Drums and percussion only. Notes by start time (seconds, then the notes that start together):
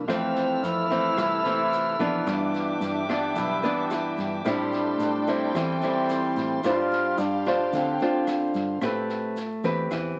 0.08 kick, cross-stick, snare, shaker
0.36 snare, shaker
0.63 snare, shaker
0.90 kick, snare, shaker
1.17 kick, cross-stick, snare, shaker
1.45 snare, shaker
1.73 snare, shaker
1.99 kick, snare, shaker
2.27 kick, cross-stick, snare, shaker
2.54 snare, shaker
2.81 snare, shaker
3.09 kick, cross-stick, snare, shaker
3.36 kick, snare, shaker
3.63 snare, shaker
3.90 cross-stick, snare, shaker
4.18 kick, snare, shaker
4.45 kick, cross-stick, snare, shaker
4.72 snare, shaker
5.00 snare, shaker
5.27 kick, snare, shaker
5.55 kick, cross-stick, snare, shaker
5.82 snare, shaker
6.09 snare, shaker
6.36 kick, snare, shaker
6.63 kick, cross-stick, snare, shaker
6.92 snare, shaker
7.18 snare, shaker
7.45 kick, cross-stick, snare, shaker
7.73 kick, snare, shaker
8.00 snare, shaker
8.27 cross-stick, snare, shaker
8.54 kick, snare, shaker
8.81 kick, cross-stick, snare, shaker
9.09 snare, shaker
9.36 snare, shaker
9.64 kick, snare, shaker
9.91 kick, cross-stick, snare, shaker